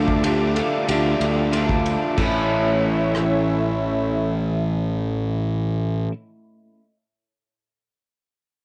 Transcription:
Already playing: fingered electric bass D2, overdriven electric guitar D3 A3 D4 F4, clean electric guitar F3, analog synth pad F4 E5 A5 D6, twelve-string acoustic guitar A4
0.08 kick
0.23 overdriven electric guitar D3 A3 D4 F4, clean electric guitar F3, twelve-string acoustic guitar G4, ride
0.56 overdriven electric guitar A3 D4 F4, twelve-string acoustic guitar A4, ride
0.88 fingered electric bass D2, overdriven electric guitar D3 A3 D4 F4, clean electric guitar F3, twelve-string acoustic guitar G4, ride
1.20 fingered electric bass D2, clean electric guitar A3 D4, ride
1.52 overdriven electric guitar D3 A3 D4 F4, clean electric guitar F3, twelve-string acoustic guitar F4, ride
1.69 kick
1.86 ride
2.14 fingered electric bass A1, analog synth pad A2 A3 E4 C#5 E5, overdriven electric guitar A2 E3, twelve-string acoustic guitar A4, kick, crash
2.18 overdriven electric guitar A3 C#4 E4 A4
3.15 cross-stick

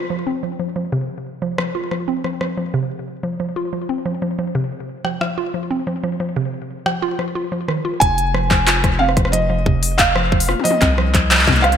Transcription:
0.10 synth arpeggio sound F3
0.27 synth arpeggio sound C4
0.43 synth arpeggio sound F3
0.59 synth arpeggio sound F3
0.76 synth arpeggio sound F3
0.92 synth arpeggio sound C3
1.42 synth arpeggio sound F3
1.58 synth arpeggio sound F3, cross-stick
1.75 synth arpeggio sound F4
1.91 synth arpeggio sound F3, cross-stick
2.08 synth arpeggio sound C4
2.24 synth arpeggio sound F3, cross-stick
2.41 synth arpeggio sound F3, cross-stick
2.57 synth arpeggio sound F3
2.74 synth arpeggio sound C3
3.23 synth arpeggio sound F3
3.40 synth arpeggio sound F3
3.56 synth arpeggio sound F4
3.73 synth arpeggio sound F3
3.89 synth arpeggio sound C4
4.06 synth arpeggio sound F3
4.22 synth arpeggio sound F3
4.39 synth arpeggio sound F3
4.55 synth arpeggio sound C3
5.05 synth arpeggio sound F3, cross-stick
5.21 synth arpeggio sound F3, cross-stick
5.38 synth arpeggio sound F4
5.54 synth arpeggio sound F3
5.71 synth arpeggio sound C4
5.87 synth arpeggio sound F3
6.04 synth arpeggio sound F3
6.20 synth arpeggio sound F3
6.36 synth arpeggio sound C3
6.86 synth arpeggio sound F3, cross-stick
7.02 synth arpeggio sound F4
7.19 synth arpeggio sound F3, cross-stick
7.35 synth arpeggio sound F4
7.52 synth arpeggio sound F3
7.68 synth arpeggio sound D#3, cross-stick
7.85 synth arpeggio sound F4
8.00 analog synth bass F1, felt piano G#5, kick, closed hi-hat
8.18 closed hi-hat
8.34 synth arpeggio sound F3, cross-stick
8.51 synth arpeggio sound F3, kick, clap
8.67 synth arpeggio sound F4, clap, closed hi-hat
8.84 synth arpeggio sound F3, kick, cross-stick, closed hi-hat
8.99 synth arpeggio sound C4, felt piano F5
9.09 cross-stick
9.17 synth arpeggio sound F3, kick, cross-stick, closed hi-hat
9.25 cross-stick
9.32 synth arpeggio sound F3, felt piano D#5, closed hi-hat
9.50 synth arpeggio sound F3
9.66 synth arpeggio sound C3, kick
9.83 open hi-hat
9.98 felt piano F5, kick, clap, closed hi-hat
10.16 synth arpeggio sound F3, cross-stick
10.32 synth arpeggio sound F3, kick
10.40 open hi-hat
10.49 synth arpeggio sound F4, cross-stick, high tom
10.60 high tom
10.64 synth arpeggio sound F3, felt piano D#5, open hi-hat
10.71 high tom
10.82 analog synth bass C2, synth arpeggio sound C4, kick, clap, closed hi-hat
10.98 synth arpeggio sound F3, cross-stick
11.14 synth arpeggio sound F3, kick, clap, closed hi-hat
11.31 synth arpeggio sound F3, clap, closed hi-hat
11.35 clap
11.39 clap
11.43 clap
11.47 synth arpeggio sound C3, kick, clap, closed hi-hat, high tom
11.52 clap
11.56 clap, closed hi-hat
11.60 felt piano F5, clap
11.64 cross-stick, closed hi-hat
11.72 closed hi-hat

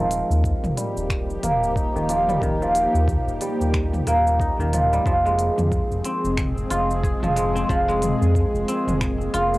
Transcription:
Already playing: analog synth bass D#1, guzheng D#3 F3, synth drone F3 A#3 D#4 G4
0.11 open hi-hat, cabasa
0.30 analog synth bass D#2, cabasa
0.44 kick, cabasa
0.64 analog synth bass D#1, mid tom, cabasa
0.77 guzheng G3, open hi-hat, cabasa
0.96 analog synth bass D#1, cabasa
1.10 finger snap, kick, cabasa
1.30 cabasa
1.43 analog synth bass D#1, guzheng A#3, mid tom, open hi-hat, cabasa
1.63 cabasa
1.76 guzheng D#4, kick, cabasa
1.95 analog synth bass D#1, guzheng D#3, cabasa
2.09 guzheng F3, open hi-hat, cabasa
2.29 guzheng G3, mid tom, cabasa
2.42 analog synth bass D#1, guzheng D#3, kick, cabasa
2.62 guzheng F3, cabasa
2.75 open hi-hat, cabasa
2.94 analog synth bass D#2, cabasa
3.08 kick, mid tom, cabasa
3.27 analog synth bass D#1, cabasa
3.41 guzheng G3, open hi-hat, cabasa
3.60 analog synth bass D#1, cabasa
3.74 finger snap, kick, cabasa
3.93 mid tom, cabasa
4.07 analog synth bass D#1, guzheng A#3, open hi-hat, cabasa
4.27 cabasa
4.40 guzheng D#4, kick, cabasa
4.59 analog synth bass D#1, guzheng D#3, cabasa
4.73 guzheng F3, mid tom, open hi-hat, cabasa
4.93 guzheng G3, cabasa
5.06 analog synth bass F1, guzheng F3, synth drone F3 G#3 C4 G#4, kick, cabasa
5.25 guzheng G#3, cabasa
5.39 open hi-hat, cabasa
5.58 analog synth bass F2, mid tom, cabasa
5.72 kick, cabasa
5.91 analog synth bass F1, cabasa
6.04 guzheng C4, open hi-hat, cabasa
6.24 analog synth bass F1, cabasa
6.37 finger snap, kick, mid tom, cabasa
6.58 cabasa
6.70 analog synth bass F1, guzheng F4, open hi-hat, cabasa
6.91 cabasa
7.03 guzheng G#4, kick, cabasa
7.23 analog synth bass F1, guzheng F3, mid tom, cabasa
7.36 guzheng G#3, open hi-hat, cabasa
7.55 guzheng C4, cabasa
7.69 analog synth bass F1, guzheng F3, synth drone A#3, kick, cabasa
7.88 guzheng G#3, cabasa
8.02 mid tom, open hi-hat, cabasa
8.22 analog synth bass F2, cabasa
8.35 kick, cabasa
8.54 analog synth bass F1, cabasa
8.68 guzheng C4, open hi-hat, cabasa
8.87 analog synth bass F1, mid tom, cabasa
9.01 finger snap, kick, cabasa
9.21 cabasa
9.34 analog synth bass F1, guzheng F4, open hi-hat, cabasa
9.54 cabasa

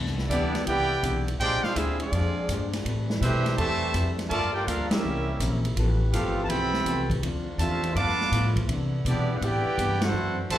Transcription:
Already playing: upright bass C2, hollow-body jazz guitar C3 E3 B3 D4, trombone section D3 B3 D4 E4
0.06 snare
0.18 snare
0.28 upright bass D2, hollow-body jazz guitar C3, trombone section G3 B3 D4, trumpet section B3 E4 G4 D5, kick, hi-hat pedal, ride
0.32 hollow-body jazz guitar E3 B3 D4
0.55 snare, ride
0.65 upright bass C2, hollow-body jazz guitar C3, trombone section B3 E4 G4, trumpet section E4 B4 D5 G5, kick, ride
0.69 hollow-body jazz guitar E3 B3 D4
1.03 upright bass B1, hollow-body jazz guitar C3 E3 B3 D4, kick, hi-hat pedal, ride
1.28 ride
1.38 upright bass A#1, hollow-body jazz guitar A#2 G#3 D4, trombone section D3 G#3 C4 D4 G4 G#4, trumpet section F4 C5 D5 G5, kick, ride
1.42 hollow-body jazz guitar G4
1.63 trombone section G#3 D4 F4, trumpet section D4 G#4 C5 F5, muted upright bass stroke, snare
1.75 upright bass D2, hollow-body jazz guitar A#2 G#3 D4 G4, trumpet section C4 F4 G#4 E5, trombone section E4, kick, hi-hat pedal, ride
1.99 trombone section F3 G#3 D4, trumpet section C4 F4 G#4 D5, ride
2.12 upright bass F2, hollow-body jazz guitar A#2 G#3, kick, ride
2.17 hollow-body jazz guitar D4 G4
2.48 upright bass G2, hollow-body jazz guitar A#2 G#3 D4, kick, hi-hat pedal, ride
2.53 hollow-body jazz guitar G4
2.73 snare, ride
2.85 upright bass A2, trombone section E3 G3 A3, hollow-body jazz guitar A3 C4 G4, kick, ride
2.89 hollow-body jazz guitar B4
3.10 snare
3.20 upright bass B2, trombone section G3 A3 E4, hollow-body jazz guitar A3 C4 G4, trumpet section G4 B4 C5 E5, kick, hi-hat pedal, ride
3.24 hollow-body jazz guitar B4
3.46 snare, ride
3.57 upright bass E2, trombone section C3 E3 A3, hollow-body jazz guitar A3 C4 G4, trumpet section G4 C5 E5 A5, kick, ride
3.62 hollow-body jazz guitar B4
3.82 muted upright bass stroke
3.93 upright bass F2, hollow-body jazz guitar A3 C4 G4 B4, kick, hi-hat pedal, ride
4.19 snare, ride
4.28 upright bass G2, trombone section D3 F3 A3 A#3, hollow-body jazz guitar G3, trumpet section F4 A#4 D5 A5, kick, ride
4.32 hollow-body jazz guitar A#3 F4 A4
4.52 trombone section A#3 D4 G4, trumpet section F4 A#4 D5 G5
4.65 upright bass D2, hollow-body jazz guitar G3 A#3 F4 A4, trombone section A#3 D4 F4, trumpet section D4 A4 A#4 F5, kick, hi-hat pedal, ride
4.89 trombone section G3 A#3 E4, trumpet section C#4 G4 A#4 E5, snare, ride
5.03 upright bass C2, hollow-body jazz guitar C3 E3 A#3 C#4, trombone section C3 C#3 E4
5.40 upright bass A#1, hollow-body jazz guitar C3 E3 A#3 C#4, kick, hi-hat pedal, ride
5.65 ride
5.76 upright bass A1, trombone section E3 A3 G4 B4, hollow-body jazz guitar F3 B3 E4 A4, kick, ride
6.13 upright bass G1, hollow-body jazz guitar F3 B3 E4 A4, trombone section A3 C4 F4, trumpet section C4 G4 A4 F5, kick, hi-hat pedal, ride
6.45 trombone section E3 B3, trumpet section A5
6.49 upright bass B1, hollow-body jazz guitar F3 B3 E4 A4, trombone section C4, trumpet section A4 E5 G5 B5, kick, ride
6.73 snare
6.86 upright bass C2, hollow-body jazz guitar F3 B3 E4 A4, kick, hi-hat pedal, ride
7.10 kick, ride
7.22 upright bass D2, hollow-body jazz guitar D3 F3 C4 E4, trombone section D3 C4 D4 F4, kick, ride
7.58 upright bass E2, trombone section C3 A3 F4, hollow-body jazz guitar D3 F3 C4 E4, trumpet section F4 C5 E5 A5, kick, hi-hat pedal, ride
7.83 ride
7.93 hollow-body jazz guitar G2 F3, upright bass G2, trombone section F3 A3 B3 D4 F4, trumpet section B4 F5 A5 D6, kick, ride
7.97 hollow-body jazz guitar B3 E4
8.09 snare
8.21 snare
8.32 hollow-body jazz guitar G2 F3 B3 E4, upright bass A2, kick, hi-hat pedal, ride
8.56 kick, ride
8.68 upright bass C3, hollow-body jazz guitar C3 E3 B3, trombone section D3 D4 E4, kick, ride
8.72 hollow-body jazz guitar D4
9.05 upright bass B2, hollow-body jazz guitar C3 E3 B3 D4, trombone section G3 B3 D4, trumpet section B3 E4 G4 D5, kick, hi-hat pedal, ride
9.38 upright bass A2, hollow-body jazz guitar C3, trumpet section F#5, kick
9.42 hollow-body jazz guitar E3 B3 D4, trombone section B3 E4 G4, trumpet section E4 B4 D5 G5, ride
9.65 muted upright bass stroke
9.78 upright bass G2, hollow-body jazz guitar C3 E3 B3 D4, kick, hi-hat pedal, ride
10.01 trombone section A3 C4 F#4, trumpet section E4 A4 C5 F#5, snare, ride
10.12 upright bass F#2, hollow-body jazz guitar F#2 E3, trombone section E3 A3 F#4
10.17 hollow-body jazz guitar A3 C4
10.50 upright bass D2, hollow-body jazz guitar F#2 E3 A3 C4, trombone section C3 E3 A3, trumpet section F#4 C5 E5 A5, kick, hi-hat pedal, ride

